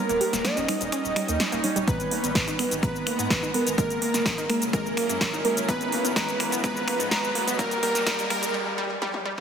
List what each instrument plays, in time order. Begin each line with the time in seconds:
Already playing: synth stab G3 D#4 C#5, ambient pad G3 C#4 D#4, digital synth lead A#4
0.09 sub bass D#1, synth pluck A#3, closed hi-hat, cabasa
0.21 synth pluck G4, open hi-hat
0.33 sub bass D#1, synth pluck A#3, snare, closed hi-hat, cabasa
0.45 synth pluck A#3, digital synth lead D#5, snare, closed hi-hat, cabasa
0.57 sub bass D#1, synth pluck C#4, closed hi-hat, cabasa
0.68 synth stab G3 D#4 C#5, finger snap, open hi-hat
0.81 sub bass D#1, synth pluck D#4, closed hi-hat, cabasa
0.92 synth pluck C#4, finger snap, closed hi-hat, cabasa
1.05 sub bass D#1, cabasa
1.16 synth pluck G3, finger snap, open hi-hat
1.28 sub bass D#2, synth pluck A#3, closed hi-hat, cabasa
1.40 snare, closed hi-hat, cabasa
1.52 sub bass D#1, synth pluck A#3, closed hi-hat, cabasa
1.64 synth stab G3 D#4 C#5, open hi-hat
1.76 sub bass D#1, synth pluck G3, closed hi-hat, cabasa
1.88 synth pluck G#3, ambient pad G#3 B3 A#5, synth stab G#3 B3 A#5, digital synth lead B4, kick, closed hi-hat, riser, cabasa
2.00 sub bass G#1, closed hi-hat, cabasa
2.11 synth pluck A#3, open hi-hat
2.24 sub bass G#1, synth pluck B3, closed hi-hat, cabasa
2.35 kick, snare, closed hi-hat, cabasa
2.48 sub bass G#1, synth pluck D#4, closed hi-hat, cabasa
2.59 synth stab G#3 B3 A#4, synth pluck B3, finger snap, open hi-hat
2.71 sub bass G#1, closed hi-hat, cabasa
2.83 synth pluck G#3, synth stab G#3 B3 A#5, digital synth lead B4, finger snap, kick, closed hi-hat, cabasa
2.95 sub bass G#1, cabasa
3.07 synth pluck A#3, finger snap, open hi-hat
3.19 sub bass G#2, synth pluck B3, closed hi-hat, cabasa
3.30 kick, snare, closed hi-hat, cabasa
3.43 sub bass G#1, synth pluck D#4, cabasa
3.54 synth stab G#3 B3 A#4, synth pluck B3, open hi-hat
3.67 sub bass G#1, closed hi-hat, cabasa
3.78 ambient pad F#3 C#4 E4 G#4 A#4, synth pluck G#3, synth stab G#3 A#3, digital synth lead A#4, kick, closed hi-hat, cabasa
3.90 sub bass F#1, closed hi-hat, cabasa
4.02 synth pluck A#3, open hi-hat
4.14 sub bass F#1, synth pluck A#3, snare, closed hi-hat, cabasa
4.26 kick, snare, closed hi-hat, cabasa
4.38 sub bass F#1, synth pluck D#4, closed hi-hat, cabasa
4.49 synth stab G#3 A#3 A#4, synth pluck A#3, finger snap, open hi-hat
4.62 sub bass F#1, closed hi-hat, cabasa
4.73 synth stab G#3 A#3 A#4, synth pluck G#3, digital synth lead A#4, finger snap, kick, closed hi-hat, cabasa
4.86 sub bass F#1, cabasa
4.97 synth pluck A#3, finger snap, open hi-hat
5.09 sub bass F#2, synth pluck A#3, closed hi-hat, cabasa
5.21 kick, snare, closed hi-hat, cabasa
5.33 sub bass F#1, synth pluck D#4, cabasa
5.45 synth stab G#3 A#3 A#4, synth pluck A#3, open hi-hat
5.57 sub bass F#1, closed hi-hat, cabasa
5.68 synth stab G#3 B3 A#5, synth pluck G#3, ambient pad G#3 B3 A#5, digital synth lead B4, kick, closed hi-hat, cabasa
5.81 sub bass G#1, closed hi-hat, cabasa
5.92 synth pluck A#3, open hi-hat
6.04 sub bass G#1, synth pluck B3, closed hi-hat, cabasa
6.16 synth pluck G#3, synth stab G#3 B3 A#5, digital synth lead B4, kick, snare, closed hi-hat, cabasa
6.28 sub bass G#1, closed hi-hat, cabasa
6.40 synth pluck A#3, finger snap, open hi-hat
6.52 sub bass G#1, synth pluck B3, closed hi-hat, cabasa
6.64 synth pluck G#3, synth stab G#3 B3 A#5, digital synth lead B4, finger snap, kick, closed hi-hat, cabasa
6.76 sub bass G#1, cabasa
6.88 synth pluck A#3, finger snap, open hi-hat
7.00 sub bass G#2, synth pluck B3, closed hi-hat, cabasa
7.11 synth pluck G#3, synth stab G#3 B3 A#5, digital synth lead B4, kick, snare, closed hi-hat, cabasa
7.24 sub bass G#1, cabasa
7.35 synth pluck A#3, open hi-hat
7.47 sub bass G#1, synth pluck B3, closed hi-hat, cabasa
7.59 synth pluck G3, synth stab G3 A#3 A#4, digital synth lead A#4, kick, closed hi-hat, cabasa
7.71 sub bass D#1, closed hi-hat, cabasa
7.83 synth pluck G3, synth stab G3 A#3 A#4, digital synth lead A#4, open hi-hat
7.95 sub bass D#1, snare, closed hi-hat, cabasa
8.07 synth pluck G3, synth stab G3 A#3 A#4, digital synth lead A#4, kick, snare, closed hi-hat, cabasa
8.19 sub bass D#1, closed hi-hat, cabasa
8.30 synth pluck G3, synth stab G3 A#3 A#4, digital synth lead A#4, finger snap, open hi-hat
8.43 sub bass D#1, closed hi-hat, cabasa
8.54 synth pluck G3
8.78 synth pluck G3
9.02 synth pluck G3, high tom
9.14 high tom
9.26 synth pluck G3